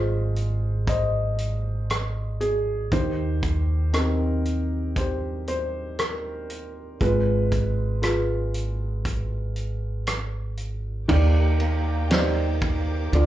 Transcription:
Already playing: upright bass G#1, felt piano G#3 F4 G#4 C5 D#5
0.36 closed hi-hat
0.87 felt piano C5 D#5, kick, closed hi-hat
1.38 closed hi-hat
1.90 cross-stick, closed hi-hat
2.41 felt piano G#4, closed hi-hat
2.92 upright bass D#2, felt piano D#3 G4 C5, kick, closed hi-hat
3.43 kick, closed hi-hat
3.93 felt piano C4 D#4 G4 A#4, cross-stick, closed hi-hat
4.45 closed hi-hat
4.96 felt piano G4 C5, kick, closed hi-hat
5.48 felt piano C5, closed hi-hat
5.99 felt piano A#4, cross-stick, closed hi-hat
6.50 closed hi-hat
7.01 upright bass G#1, felt piano G#3 F4 B4, kick, closed hi-hat
7.52 kick, closed hi-hat
8.02 felt piano F4 G#4 B4, cross-stick, closed hi-hat
8.54 closed hi-hat
9.05 kick, closed hi-hat
9.56 closed hi-hat
10.07 cross-stick, closed hi-hat
10.57 closed hi-hat
11.08 upright bass D#2, felt piano D#3 G4 D5, clean electric guitar A#3 G4, string section D#4 A#4 G5 D6, kick, crash
11.60 clean electric guitar A#3, ride
12.10 felt piano D#4 G4 C5 D5, snare, ride
12.61 kick, ride
13.13 upright bass D2, felt piano D3 F4 D5, clean electric guitar F3, string section F5 G#5, ride

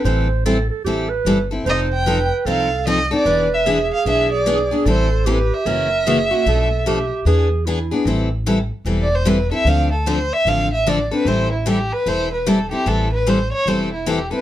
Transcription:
0.05 upright bass A1, steel-string acoustic guitar E3 G3 C4 E4 A4, clarinet C5
0.45 steel-string acoustic guitar E3 G3 C4 E4 A4, clarinet A4
0.70 clarinet A4
0.85 upright bass A1, steel-string acoustic guitar E3 G3 C4 E4 A4, clarinet G4
1.09 clarinet B4
1.25 upright bass G1, steel-string acoustic guitar E3 G3 C4 E4 A4
1.51 steel-string acoustic guitar C4 E4 A4
1.65 upright bass F1, steel-string acoustic guitar F3 C4 D#4 A4, clarinet C5, violin D#5
1.93 violin G5
2.06 steel-string acoustic guitar F3 C4 D#4 A4, clarinet B4
2.45 upright bass C2, steel-string acoustic guitar F3 C4 D#4 A4, clarinet A4, violin F5
2.87 steel-string acoustic guitar F3 C4 D#4 A4, violin D#5
3.11 steel-string acoustic guitar C4 D#4 A4, violin D5
3.25 upright bass E1, steel-string acoustic guitar E3 B3 G#4, clarinet B4
3.54 violin E5
3.66 steel-string acoustic guitar E3 B3 D4 G#4, clarinet G#4
3.94 violin F5
4.05 upright bass B1, steel-string acoustic guitar E3 B3 D4 G#4, violin E5
4.33 violin D5
4.46 steel-string acoustic guitar E3 B3 D4 G#4
4.71 steel-string acoustic guitar B3 D4 G#4
4.85 upright bass A1, steel-string acoustic guitar E3 G3 C4 E4 A4, clarinet A4, violin C5
5.26 steel-string acoustic guitar E3 G3 C4 E4 A4, clarinet G4
5.31 violin B4
5.54 violin E5
5.65 upright bass F#1, steel-string acoustic guitar C#3 E3 A#3 C#4 F#4, clarinet A#4
6.07 steel-string acoustic guitar C#3 E3 A#3 C#4 F#4, clarinet G#4
6.31 steel-string acoustic guitar A#3 C#4 F#4, clarinet F#4
6.46 upright bass B1, steel-string acoustic guitar B2 F3 A3 D4 A4, clarinet A4
6.86 steel-string acoustic guitar B2 F3 A3 D4 A4, clarinet G4
7.25 upright bass E2, steel-string acoustic guitar E3 B3 D4 G#4, clarinet G#4
7.66 steel-string acoustic guitar E3 B3 D4 G#4, clarinet E4
7.91 steel-string acoustic guitar B3 D4 G#4
8.05 upright bass A1, steel-string acoustic guitar E3 G3 C4 E4 A4
8.46 steel-string acoustic guitar E3 G3 C4 E4 A4
8.85 upright bass E1, steel-string acoustic guitar E3 G3 C4 E4 A4
9.02 violin D5
9.15 violin C5
9.25 steel-string acoustic guitar E3 G3 C4 E4 A4, violin B4
9.51 steel-string acoustic guitar C4 E4 A4, violin E5
9.65 upright bass D2, steel-string acoustic guitar D3 F3 C4 D4 A4, violin F5
9.92 violin A4
10.06 steel-string acoustic guitar D3 F3 C4 D4 A4, violin C5
10.33 violin E5
10.45 upright bass A1, steel-string acoustic guitar D3 F3 C4 D4 A4, violin F5
10.74 violin E5
10.87 steel-string acoustic guitar D3 F3 C4 D4 A4, violin D5
11.11 steel-string acoustic guitar C4 D4 A4, violin B4
11.25 upright bass A1, steel-string acoustic guitar E3 G3 C4 E4 A4, violin C5
11.53 violin E4
11.66 steel-string acoustic guitar E3 G3 C4 E4 A4, violin G4
11.93 violin B4
12.06 upright bass E1, steel-string acoustic guitar E3 G3 C4 E4 A4, violin C5
12.34 violin B4
12.46 steel-string acoustic guitar E3 G3 C4 E4 A4, violin A4
12.71 steel-string acoustic guitar C4 E4 A4, violin G4
12.86 upright bass A1, steel-string acoustic guitar E3 G3 C4 E4 A4, violin A4
13.13 violin B4
13.27 steel-string acoustic guitar E3 G3 C4 E4 A4, violin C5
13.53 violin C#5
13.66 upright bass E1, steel-string acoustic guitar E3 G3 C4 E4 A4, violin C5
13.93 violin E4
14.06 steel-string acoustic guitar E3 G3 C4 E4 A4, violin G4
14.31 steel-string acoustic guitar C4 E4 A4, violin B4

